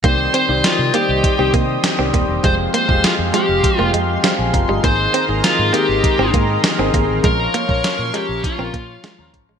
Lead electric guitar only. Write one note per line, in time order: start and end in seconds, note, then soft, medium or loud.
0.05 0.33 C5 medium
0.35 0.65 C5 medium
0.65 0.94 F4 medium
0.95 1.50 G4 medium
2.45 2.53 C5 loud
2.74 3.05 C5 medium
3.05 3.13 F4 medium
3.34 3.77 G4 medium
3.77 3.90 F4 medium
4.84 5.12 C5 loud
5.14 5.22 C5 medium
5.44 5.74 F4 medium
5.74 6.30 G4 medium
7.25 7.54 A#4 loud
7.55 8.16 A#4 loud
8.15 8.44 G4 medium
8.45 9.30 F4 medium